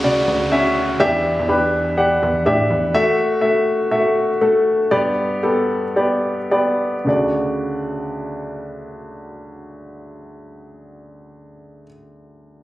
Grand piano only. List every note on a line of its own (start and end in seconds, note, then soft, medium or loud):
0.00 0.04 C#3 loud
0.00 0.40 C#3 medium
0.00 1.03 D3 medium
0.00 0.04 F#4 medium
0.00 0.04 D5 loud
0.04 0.40 F#4 medium
0.04 0.40 D5 medium
0.52 0.88 C#4 medium
0.52 0.88 F#4 medium
0.52 0.88 E5 medium
1.00 1.69 E3 medium
1.00 1.36 D4 medium
1.00 1.36 G4 medium
1.00 1.37 E5 loud
1.48 1.85 D4 medium
1.48 1.85 G4 medium
1.48 1.85 B4 medium
1.97 2.33 D4 medium
1.97 2.34 G4 medium
1.97 2.34 F#5 medium
2.46 2.82 D4 medium
2.46 2.82 G4 medium
2.46 2.82 E5 medium
2.94 3.31 A3 medium
2.94 3.31 F#4 medium
2.94 3.31 E5 loud
3.41 3.79 A3 medium
3.41 3.79 F#4 medium
3.41 3.79 E5 medium
3.91 4.29 A3 medium
3.91 4.29 F#4 medium
3.91 4.29 E5 medium
4.41 4.79 A3 medium
4.41 4.79 F#4 medium
4.41 4.79 A4 medium
4.91 5.66 G2 medium
4.91 5.30 B3 medium
4.91 5.30 G4 medium
4.91 5.30 D5 medium
5.43 5.83 B3 medium
5.43 5.83 G4 medium
5.43 5.83 A4 medium
5.96 6.37 B3 medium
5.96 6.37 G4 medium
5.96 6.37 D5 medium
6.51 6.93 B3 medium
6.51 6.93 G4 medium
6.51 6.93 D5 medium
7.05 11.86 D2 medium
7.05 11.84 C#3 medium
7.05 11.86 F#4 medium
7.09 11.88 D5 medium